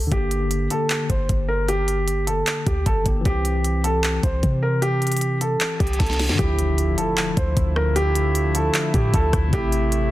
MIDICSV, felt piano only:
0, 0, Header, 1, 2, 480
1, 0, Start_track
1, 0, Key_signature, -1, "minor"
1, 0, Tempo, 392157
1, 142, Time_signature, 4, 2, 24, 8
1, 12376, End_track
2, 0, Start_track
2, 0, Title_t, "Felt piano"
2, 0, Program_c, 0, 0
2, 147, Note_on_c, 0, 67, 93
2, 822, Note_off_c, 0, 67, 0
2, 868, Note_on_c, 0, 69, 79
2, 1317, Note_off_c, 0, 69, 0
2, 1346, Note_on_c, 0, 72, 74
2, 1795, Note_off_c, 0, 72, 0
2, 1817, Note_on_c, 0, 70, 78
2, 2031, Note_off_c, 0, 70, 0
2, 2062, Note_on_c, 0, 67, 100
2, 2739, Note_off_c, 0, 67, 0
2, 2778, Note_on_c, 0, 69, 74
2, 3231, Note_off_c, 0, 69, 0
2, 3262, Note_on_c, 0, 67, 77
2, 3474, Note_off_c, 0, 67, 0
2, 3501, Note_on_c, 0, 69, 90
2, 3713, Note_off_c, 0, 69, 0
2, 3986, Note_on_c, 0, 67, 94
2, 4661, Note_off_c, 0, 67, 0
2, 4701, Note_on_c, 0, 69, 85
2, 5153, Note_off_c, 0, 69, 0
2, 5183, Note_on_c, 0, 72, 79
2, 5634, Note_off_c, 0, 72, 0
2, 5661, Note_on_c, 0, 70, 79
2, 5873, Note_off_c, 0, 70, 0
2, 5899, Note_on_c, 0, 67, 109
2, 6578, Note_off_c, 0, 67, 0
2, 6622, Note_on_c, 0, 69, 71
2, 7073, Note_off_c, 0, 69, 0
2, 7098, Note_on_c, 0, 67, 83
2, 7312, Note_off_c, 0, 67, 0
2, 7332, Note_on_c, 0, 69, 80
2, 7548, Note_off_c, 0, 69, 0
2, 7819, Note_on_c, 0, 67, 103
2, 8498, Note_off_c, 0, 67, 0
2, 8538, Note_on_c, 0, 69, 82
2, 8992, Note_off_c, 0, 69, 0
2, 9030, Note_on_c, 0, 72, 75
2, 9478, Note_off_c, 0, 72, 0
2, 9510, Note_on_c, 0, 70, 78
2, 9718, Note_off_c, 0, 70, 0
2, 9741, Note_on_c, 0, 67, 114
2, 10418, Note_off_c, 0, 67, 0
2, 10467, Note_on_c, 0, 69, 78
2, 10916, Note_off_c, 0, 69, 0
2, 10943, Note_on_c, 0, 67, 83
2, 11155, Note_off_c, 0, 67, 0
2, 11189, Note_on_c, 0, 69, 90
2, 11398, Note_off_c, 0, 69, 0
2, 11672, Note_on_c, 0, 67, 107
2, 12344, Note_off_c, 0, 67, 0
2, 12376, End_track
0, 0, End_of_file